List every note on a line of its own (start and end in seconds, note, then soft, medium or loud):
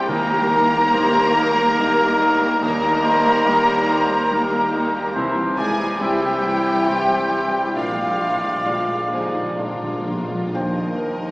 0.00 0.11 C3 medium
0.00 0.11 E3 medium
0.00 0.11 G3 medium
0.00 0.11 C4 medium
0.00 0.12 C4 medium
0.00 0.11 E4 medium
0.00 0.12 E4 medium
0.00 0.12 C5 medium
0.00 0.12 E5 medium
0.07 2.58 D#2 medium
0.07 0.84 D#2 medium
0.07 2.61 D#3 medium
0.07 2.58 D#3 medium
0.07 1.32 D#3 loud
0.07 5.09 G3 loud
0.07 2.58 A#3 loud
0.07 0.29 A#3 medium
0.07 5.10 D#4 loud
0.07 0.29 D#4 medium
0.07 0.94 A#4 loud
0.07 2.59 A#4 loud
0.07 2.35 A#5 loud
0.07 2.60 A#5 loud
0.30 0.51 G3 medium
0.30 1.98 A#3 medium
0.30 0.52 G4 medium
0.51 0.73 A#3 medium
0.51 2.19 D#4 medium
0.51 0.73 D#4 medium
0.73 0.94 G3 medium
0.73 0.94 G4 medium
0.92 1.69 D#2 loud
0.92 1.74 G3 medium
0.92 1.74 A#3 medium
0.92 1.14 A#3 medium
0.92 1.75 D#4 medium
0.92 1.14 D#4 medium
0.92 3.45 A#4 medium
0.92 1.33 C5 loud
1.14 1.36 G3 medium
1.14 1.36 G4 medium
1.14 1.56 D#5 medium
1.33 1.58 A#3 medium
1.33 1.58 D#4 medium
1.33 2.59 A#4 loud
1.57 1.78 G3 medium
1.57 1.78 G4 medium
1.57 3.67 D#5 medium
1.79 2.53 D#2 medium
1.79 2.59 G3 medium
1.79 1.98 A#3 medium
1.79 2.59 A#3 medium
1.79 1.98 D#4 medium
1.79 2.59 D#4 medium
1.99 2.21 G3 medium
1.99 2.41 A#3 medium
1.99 2.21 G4 medium
2.20 2.42 A#3 medium
2.20 2.83 D#4 medium
2.20 2.42 D#4 medium
2.42 2.63 G3 medium
2.42 3.03 A#3 medium
2.42 2.63 G4 medium
2.61 5.10 D#2 medium
2.61 3.37 D#2 loud
2.61 5.18 D#3 medium
2.61 5.11 D#3 medium
2.61 5.10 A#3 loud
2.61 2.83 A#3 medium
2.61 2.82 D#4 medium
2.61 5.11 A#4 loud
2.61 3.05 D#5 loud
2.61 5.10 A#5 loud
2.61 5.11 A#5 loud
2.84 3.05 G3 medium
2.84 4.72 D#4 medium
2.84 3.05 G4 medium
3.03 4.51 A#3 medium
3.03 3.26 A#3 medium
3.03 3.26 D#4 medium
3.03 3.48 C5 loud
3.27 3.47 G3 medium
3.27 3.47 G4 medium
3.46 4.21 D#2 medium
3.46 4.26 G3 medium
3.46 4.26 A#3 medium
3.46 3.66 A#3 medium
3.46 4.26 D#4 medium
3.46 3.67 D#4 medium
3.46 3.89 A#4 medium
3.46 5.18 A#4 medium
3.68 3.88 G3 medium
3.68 3.88 G4 medium
3.68 4.08 D#5 medium
3.87 4.09 A#3 medium
3.87 4.09 D#4 medium
3.87 4.34 C5 medium
4.10 4.30 G3 medium
4.10 4.30 G4 medium
4.10 5.18 D#5 medium
4.30 5.05 D#2 medium
4.30 5.11 G3 medium
4.30 5.11 A#3 medium
4.30 4.50 A#3 medium
4.30 4.50 D#4 medium
4.30 5.11 D#4 medium
4.30 4.88 A#4 loud
4.52 4.73 G3 medium
4.52 4.93 A#3 medium
4.52 4.73 G4 medium
4.73 4.94 A#3 medium
4.73 4.94 D#4 medium
4.73 5.18 D#4 medium
4.94 5.16 G3 medium
4.94 5.18 A#3 medium
4.94 5.16 G4 medium
5.12 7.72 C2 medium
5.12 5.90 C2 medium
5.12 7.80 C3 medium
5.12 7.72 C3 medium
5.12 7.70 E3 medium
5.12 7.70 E4 loud
5.12 5.35 E4 medium
5.12 5.59 C5 loud
5.16 5.35 E3 medium
5.36 7.79 E3 medium
5.36 5.57 G3 medium
5.36 5.58 G4 medium
5.56 5.79 E3 medium
5.56 5.96 G#3 loud
5.56 7.29 C4 medium
5.56 5.79 E4 medium
5.56 5.96 G#4 medium
5.56 6.04 D5 medium
5.56 5.96 G#5 loud
5.56 6.04 G#5 medium
5.78 6.00 G3 medium
5.78 6.86 E4 medium
5.78 6.00 G4 medium
5.99 6.76 C2 medium
5.99 6.20 E3 medium
5.99 7.75 G3 medium
5.99 6.82 G3 medium
5.99 6.82 C4 medium
5.99 6.20 E4 medium
5.99 6.83 E4 medium
5.99 7.79 G4 medium
5.99 7.75 G4 medium
5.99 6.89 E5 medium
5.99 7.76 G5 loud
5.99 7.77 G5 medium
6.21 6.42 G3 medium
6.21 6.42 G4 medium
6.21 6.64 C5 medium
6.43 6.65 E3 medium
6.43 6.64 E4 medium
6.43 7.79 E5 medium
6.64 6.86 G3 medium
6.64 6.86 G4 medium
6.64 7.79 C5 medium
6.86 7.65 C2 medium
6.86 7.06 E3 medium
6.86 7.72 G3 medium
6.86 7.72 C4 medium
6.86 7.06 E4 medium
6.86 7.79 E4 medium
6.86 7.72 E4 medium
6.86 7.76 C5 medium
7.08 7.30 G3 medium
7.08 7.51 G3 medium
7.08 7.30 G4 medium
7.29 7.52 E3 medium
7.29 7.79 C4 medium
7.29 7.52 E4 medium
7.52 7.75 G3 medium
7.52 7.79 G3 medium
7.52 7.75 G4 medium
7.73 10.50 A#1 medium
7.73 8.56 A#1 medium
7.73 10.58 A#2 medium
7.73 10.50 A#2 medium
7.73 9.59 F3 medium
7.73 10.16 G#3 medium
7.73 7.95 A#3 medium
7.73 7.95 D4 medium
7.73 9.10 F4 medium
7.73 10.16 D5 medium
7.73 10.04 D5 medium
7.73 9.10 F5 medium
7.77 7.83 A#2 soft
7.77 9.56 F5 medium
7.84 7.91 A#2 soft
7.92 7.99 A#2 soft
7.92 8.20 G#3 medium
7.92 8.20 F4 medium
7.98 8.07 A#2 soft
7.98 9.81 F3 medium
8.08 8.14 A#2 soft
8.15 8.22 A#2 soft
8.15 8.43 D4 medium
8.19 8.30 A#2 soft
8.19 8.43 A#3 medium
8.19 10.58 A#3 medium
8.31 8.38 A#2 soft
8.40 8.45 A#2 soft
8.40 8.65 G#3 medium
8.40 8.65 F4 medium
8.40 9.57 F4 medium
8.47 8.54 A#2 soft
8.55 8.61 A#2 medium
8.62 8.69 A#2 medium
8.62 8.87 A#3 medium
8.62 8.87 D4 medium
8.62 10.58 G#4 medium
8.62 9.55 D5 medium
8.67 9.48 A#1 medium
8.67 9.55 G#3 soft
8.67 9.55 F4 medium
8.71 8.78 A#2 medium
8.79 8.85 A#2 medium
8.86 8.93 A#2 medium
8.86 9.11 G#3 soft
8.86 9.11 F4 medium
8.86 9.34 D5 medium
8.94 9.01 A#2 medium
9.02 9.09 A#2 medium
9.09 9.18 A#2 medium
9.09 9.34 A#3 medium
9.09 9.34 D4 medium
9.09 9.55 D#4 medium
9.09 9.56 G#4 medium
9.09 10.58 F5 medium
9.13 9.56 C5 medium
9.20 9.26 A#2 medium
9.28 9.34 A#2 medium
9.33 9.41 A#2 medium
9.33 9.58 G#3 medium
9.33 9.57 F4 soft
9.33 10.58 D5 medium
9.42 9.49 A#2 medium
9.51 9.57 A#2 medium
9.58 10.43 A#1 medium
9.58 9.66 A#2 medium
9.58 10.50 G#3 soft
9.58 9.80 A#3 medium
9.58 9.80 D4 medium
9.58 10.50 D4 soft
9.58 10.58 F4 medium
9.58 10.51 F4 medium
9.58 10.55 F4 medium
9.58 10.55 A#4 medium
9.58 10.51 D5 medium
9.67 9.74 A#2 medium
9.75 9.82 A#2 medium
9.80 9.90 A#2 medium
9.80 10.31 F3 medium
9.80 10.06 G#3 soft
9.80 10.06 F4 soft
9.91 9.98 A#2 loud
9.99 10.07 A#2 loud
10.05 10.15 A#2 loud
10.05 10.30 A#3 medium
10.05 10.30 D4 medium
10.05 10.58 D4 medium
10.17 10.23 A#2 loud
10.24 10.30 A#2 loud
10.29 10.38 A#2 loud
10.29 10.58 F3 soft
10.29 10.53 G#3 medium
10.29 10.53 F4 medium
10.40 10.47 A#2 loud
10.54 11.31 D#2 medium
10.54 11.31 D#3 medium
10.54 11.31 D#4 medium
10.54 11.31 A#4 medium
10.54 11.00 C5 medium
10.54 11.31 D#5 medium
10.54 11.31 G5 medium
10.58 11.31 A#3 medium
10.76 11.31 A#3 soft
10.76 11.11 D#4 soft
10.97 11.31 A#3 soft
10.97 11.31 D#4 soft
10.97 11.31 A#4 medium
11.20 11.31 D#4 soft
11.20 11.31 G4 soft